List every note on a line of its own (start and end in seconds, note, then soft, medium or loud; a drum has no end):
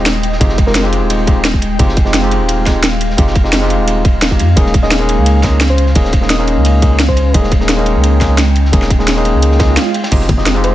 0.00 0.39 D#1 medium
0.00 4.53 G#3 medium
0.00 1.77 D#5 medium
0.00 4.53 G5 medium
0.05 snare loud
0.05 closed hi-hat medium
0.05 ride medium
0.23 closed hi-hat medium
0.23 ride medium
0.32 snare soft
0.40 1.03 F1 loud
0.40 0.56 G#3 loud
0.40 0.56 C4 medium
0.40 0.57 D#4 medium
0.40 0.57 F4 medium
0.40 0.57 G4 loud
0.40 kick loud
0.40 closed hi-hat loud
0.40 ride medium
0.49 snare medium
0.58 kick loud
0.58 closed hi-hat medium
0.58 ride medium
0.66 0.82 G#3 medium
0.66 0.82 C4 medium
0.66 0.82 D#4 medium
0.66 0.82 F4 medium
0.66 0.83 G4 loud
0.66 0.72 A#4 medium
0.66 snare soft
0.75 0.81 A#4 medium
0.75 snare loud
0.75 closed hi-hat loud
0.75 ride medium
0.83 1.25 G#3 medium
0.83 1.25 C4 medium
0.83 1.25 D#4 medium
0.83 1.26 F4 medium
0.83 1.26 G4 loud
0.83 snare soft
0.92 closed hi-hat medium
0.92 ride medium
1.02 1.78 D#1 medium
1.10 closed hi-hat loud
1.10 ride medium
1.27 1.43 G#3 medium
1.27 1.43 C4 medium
1.27 1.43 D#4 medium
1.27 1.44 F4 medium
1.27 1.44 G4 medium
1.27 kick loud
1.27 closed hi-hat medium
1.27 ride medium
1.45 snare loud
1.45 closed hi-hat medium
1.45 ride loud
1.54 kick medium
1.62 closed hi-hat medium
1.62 ride medium
1.79 2.42 F1 loud
1.79 1.95 G#3 loud
1.79 1.95 C4 medium
1.79 1.95 D#4 medium
1.79 1.96 F4 medium
1.79 1.96 G4 loud
1.79 7.30 F5 medium
1.79 kick loud
1.79 closed hi-hat loud
1.79 ride medium
1.89 snare medium
1.97 kick loud
1.97 closed hi-hat medium
1.97 ride medium
2.05 2.20 G#3 medium
2.05 2.21 C4 medium
2.05 2.21 D#4 medium
2.05 2.21 F4 medium
2.05 2.21 G4 medium
2.05 snare soft
2.14 snare loud
2.14 closed hi-hat medium
2.14 ride medium
2.21 2.63 G#3 medium
2.21 2.64 C4 medium
2.21 2.64 D#4 medium
2.21 2.64 F4 medium
2.21 2.65 G4 loud
2.31 closed hi-hat medium
2.31 ride medium
2.41 3.17 D#1 medium
2.48 closed hi-hat loud
2.48 ride medium
2.65 2.82 G#3 medium
2.65 2.82 C4 medium
2.65 2.82 D#4 medium
2.65 2.82 F4 medium
2.65 2.82 G4 medium
2.65 kick medium
2.65 snare medium
2.65 snare soft
2.65 closed hi-hat medium
2.65 ride medium
2.83 snare loud
2.83 closed hi-hat loud
2.83 ride loud
3.01 closed hi-hat medium
3.01 ride medium
3.10 snare soft
3.17 3.81 F1 loud
3.17 3.34 G#3 loud
3.17 3.34 C4 medium
3.17 3.34 D#4 medium
3.17 3.34 F4 medium
3.17 3.34 G4 loud
3.17 kick loud
3.17 closed hi-hat medium
3.17 ride medium
3.27 snare medium
3.35 kick loud
3.35 closed hi-hat medium
3.35 ride medium
3.44 3.59 G#3 medium
3.44 3.59 C4 medium
3.44 3.60 D#4 medium
3.44 3.60 F4 medium
3.44 3.60 G4 medium
3.44 snare soft
3.53 snare loud
3.53 closed hi-hat medium
3.53 ride medium
3.61 4.02 G#3 medium
3.61 4.03 C4 medium
3.61 4.03 D#4 medium
3.61 4.03 F4 medium
3.61 4.04 G4 loud
3.61 snare soft
3.70 closed hi-hat medium
3.70 ride medium
3.79 4.33 D#1 medium
3.88 closed hi-hat medium
3.88 ride medium
4.05 kick loud
4.05 closed hi-hat medium
4.05 ride medium
4.22 snare loud
4.22 closed hi-hat medium
4.22 ride medium
4.30 4.41 F1 medium
4.30 4.47 G#3 medium
4.30 4.47 C4 medium
4.30 4.47 D#4 medium
4.30 4.47 F4 medium
4.30 4.47 G4 medium
4.30 kick medium
4.39 4.55 F2 loud
4.39 closed hi-hat medium
4.39 ride medium
4.56 5.19 D#1 loud
4.56 4.72 G#3 loud
4.56 10.75 G#3 medium
4.56 4.73 A#3 medium
4.56 4.73 C#4 medium
4.56 10.08 C#4 medium
4.56 4.73 D#4 medium
4.56 4.73 G#4 loud
4.56 kick loud
4.56 closed hi-hat medium
4.56 ride medium
4.66 snare soft
4.74 kick loud
4.74 closed hi-hat medium
4.74 ride medium
4.82 4.98 G#3 medium
4.82 4.98 A#3 medium
4.82 4.98 C#4 medium
4.82 4.98 D#4 medium
4.82 4.99 G#4 loud
4.82 5.04 D#5 medium
4.82 snare medium
4.91 snare loud
4.91 closed hi-hat medium
4.91 ride loud
4.99 5.41 G#3 medium
4.99 5.41 A#3 medium
4.99 5.41 C#4 medium
4.99 5.42 D#4 medium
4.99 5.42 G#4 loud
5.09 closed hi-hat medium
5.09 ride medium
5.18 5.94 C#2 medium
5.26 closed hi-hat medium
5.26 ride medium
5.43 5.59 G#3 medium
5.43 5.59 A#3 medium
5.43 5.59 C#4 medium
5.43 5.60 D#4 medium
5.43 5.60 G#4 medium
5.43 kick medium
5.43 snare soft
5.43 snare medium
5.43 closed hi-hat medium
5.43 ride medium
5.61 snare loud
5.61 closed hi-hat medium
5.61 ride medium
5.70 5.91 C5 medium
5.78 closed hi-hat medium
5.78 ride medium
5.86 snare soft
5.95 6.58 D#1 loud
5.95 6.11 G#3 loud
5.95 6.11 A#3 medium
5.95 6.12 C#4 medium
5.95 6.12 D#4 medium
5.95 6.12 G#4 loud
5.95 kick loud
5.95 closed hi-hat medium
5.95 ride loud
6.05 snare medium
6.13 kick loud
6.13 closed hi-hat medium
6.13 ride medium
6.21 6.37 G#3 medium
6.21 6.37 A#3 medium
6.21 6.37 C#4 medium
6.21 6.37 D#4 medium
6.21 6.37 G#4 medium
6.21 snare soft
6.30 6.51 D#5 medium
6.30 snare loud
6.30 closed hi-hat medium
6.30 ride medium
6.38 6.80 G#3 medium
6.38 6.80 A#3 medium
6.38 6.80 C#4 medium
6.38 6.81 D#4 medium
6.38 6.81 G#4 loud
6.38 snare soft
6.48 closed hi-hat medium
6.48 ride medium
6.57 7.33 C#2 medium
6.65 closed hi-hat medium
6.65 ride medium
6.82 6.98 G#3 medium
6.82 6.98 A#3 medium
6.82 6.98 C#4 medium
6.82 6.98 D#4 medium
6.82 6.99 G#4 medium
6.82 kick loud
6.82 closed hi-hat medium
6.82 ride medium
6.99 snare loud
6.99 closed hi-hat medium
6.99 ride medium
7.08 7.43 C5 medium
7.08 kick medium
7.17 closed hi-hat medium
7.17 ride medium
7.34 7.97 D#1 loud
7.34 7.50 G#3 loud
7.34 7.50 A#3 medium
7.34 7.50 C#4 medium
7.34 7.50 D#4 medium
7.34 7.51 G#4 loud
7.34 10.75 G5 medium
7.34 kick loud
7.34 closed hi-hat medium
7.34 ride medium
7.44 snare medium
7.52 kick loud
7.52 closed hi-hat medium
7.52 ride medium
7.60 7.76 G#3 medium
7.60 7.76 A#3 medium
7.60 7.76 C#4 medium
7.60 7.76 D#4 medium
7.60 7.76 G#4 medium
7.60 snare soft
7.69 snare loud
7.69 closed hi-hat medium
7.69 ride medium
7.77 8.18 G#3 medium
7.77 8.19 A#3 medium
7.77 8.19 C#4 medium
7.77 8.19 D#4 medium
7.77 8.20 G#4 loud
7.86 closed hi-hat medium
7.86 ride medium
7.95 8.72 C#2 medium
8.03 closed hi-hat medium
8.03 ride medium
8.20 8.37 G#3 medium
8.20 8.37 A#3 medium
8.20 8.37 C#4 medium
8.20 8.37 D#4 medium
8.20 8.37 G#4 medium
8.20 kick medium
8.20 snare soft
8.20 snare medium
8.20 closed hi-hat medium
8.20 ride medium
8.37 snare loud
8.37 closed hi-hat medium
8.37 ride medium
8.56 closed hi-hat medium
8.56 ride medium
8.65 snare soft
8.72 9.36 D#1 loud
8.72 8.89 G#3 loud
8.72 8.89 A#3 medium
8.72 8.89 C#4 medium
8.72 8.89 D#4 medium
8.72 8.89 G#4 loud
8.72 kick loud
8.72 closed hi-hat loud
8.72 ride medium
8.82 snare soft
8.82 snare medium
8.90 kick loud
8.90 closed hi-hat medium
8.90 ride medium
8.99 9.14 G#3 medium
8.99 9.14 A#3 medium
8.99 9.15 C#4 medium
8.99 9.15 D#4 medium
8.99 9.15 G#4 medium
8.99 snare soft
9.08 snare loud
9.08 closed hi-hat medium
9.08 ride medium
9.15 9.57 G#3 medium
9.15 9.57 A#3 medium
9.15 9.58 C#4 medium
9.15 9.58 D#4 medium
9.15 9.58 G#4 loud
9.15 snare soft
9.25 closed hi-hat medium
9.25 ride medium
9.34 9.77 C#2 medium
9.42 closed hi-hat loud
9.42 ride medium
9.42 swell medium
9.51 snare soft
9.59 9.75 G#3 medium
9.59 9.75 A#3 medium
9.59 9.76 C#4 medium
9.59 9.76 D#4 medium
9.59 9.76 G#4 medium
9.59 kick loud
9.59 snare loud
9.59 closed hi-hat medium
9.59 ride medium
9.77 snare loud
9.77 closed hi-hat medium
9.77 ride medium
9.94 closed hi-hat medium
9.94 ride medium
10.04 snare loud
10.04 ride medium
10.11 10.74 F1 loud
10.11 10.27 G#3 loud
10.11 10.28 C4 medium
10.11 10.28 D#4 medium
10.11 10.28 F4 medium
10.11 10.28 G4 loud
10.11 10.75 D#5 medium
10.11 kick loud
10.11 closed hi-hat loud
10.11 ride medium
10.11 crash medium
10.21 snare medium
10.29 kick loud
10.29 closed hi-hat medium
10.29 ride medium
10.29 high conga medium
10.37 10.53 G#3 medium
10.37 10.53 C4 medium
10.37 10.53 D#4 medium
10.37 10.53 F4 medium
10.37 10.54 G4 medium
10.37 10.59 D#5 medium
10.37 snare soft
10.46 snare loud
10.46 closed hi-hat loud
10.46 ride medium
10.54 10.75 G#3 medium
10.54 10.75 C4 medium
10.54 10.75 D#4 medium
10.54 10.75 F4 medium
10.54 10.75 G4 loud
10.64 10.75 C5 medium
10.64 closed hi-hat medium
10.64 ride medium